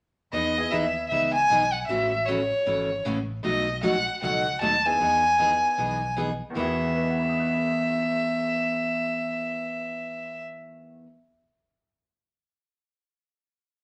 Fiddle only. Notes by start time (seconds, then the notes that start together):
0.33 D#5
0.71 E5
1.09 E5
1.33 G#5
1.72 F#5
1.87 E5
2.26 C#5
3.44 D#5
3.83 F#5
4.23 F#5
4.61 A5
4.86 G#5
6.56 E5